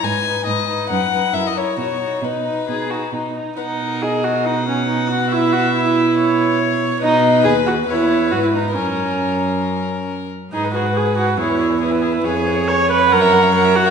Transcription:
X:1
M:4/4
L:1/16
Q:1/4=139
K:B
V:1 name="Violin"
g4 d4 f4 e d c2 | c4 B8- B2 z2 | B2 A6 B8- | B12 c4 |
B8 B8 | A12- A2 z2 | G B G B G B G B G B G B G B G B | B c B c B c B c f e f e f e f e |]
V:2 name="Violin"
B2 B2 B2 B2 B2 B2 A2 A2 | F2 F2 D4 G2 F2 D4 | f4 d4 f8 | e8 c8 |
d4 B4 c4 B4 | A12- A2 z2 | B8 c4 B4 | c8 c8 |]
V:3 name="Viola"
D2 D2 D2 D2 D2 D2 E2 E2 | D2 D2 D2 D2 D2 D2 D2 D2 | D4 G2 F2 D2 C2 D2 F2 | E2 F2 E8- E2 z2 |
D4 G2 F2 E4 F E D2 | C12 z4 | D2 F2 G2 F2 E4 E4 | G4 c2 B2 A4 A2 F2 |]
V:4 name="Cello" clef=bass
G,,4 G,,4 F,,4 F,,4 | B,,4 B,,4 B,,4 B,,4 | B,,16- | B,,16 |
B,,4 D,,4 E,,4 G,,4 | F,,12- F,,2 z2 | G,,8 E,,8 | ^E,,8 F,,8 |]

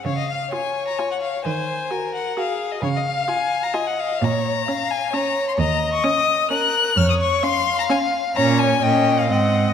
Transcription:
X:1
M:3/4
L:1/16
Q:1/4=130
K:Db
V:1 name="Violin"
d e f2 a3 b a g f2 | a6 g2 f3 e | d e f2 a3 b a g f2 | b6 a2 b3 c' |
b3 d' e'4 g'4 | f' e' d'2 c'3 b a2 z2 | b2 a2 =g3 f _g3 e |]
V:2 name="Violin"
f4 d8 | c4 B4 A4 | f8 e4 | d4 f4 d4 |
e8 B4 | d4 f8 | d4 e4 e4 |]
V:3 name="Viola"
z4 F4 F4 | z4 G4 G4 | z4 F4 F4 | z4 D4 D4 |
z4 D4 D4 | z4 D4 D4 | D4 D4 C4 |]
V:4 name="Cello" clef=bass
D,4 z8 | E,4 z8 | D,4 z8 | B,,4 z8 |
E,,4 z8 | F,,4 z8 | B,,4 B,,4 A,,4 |]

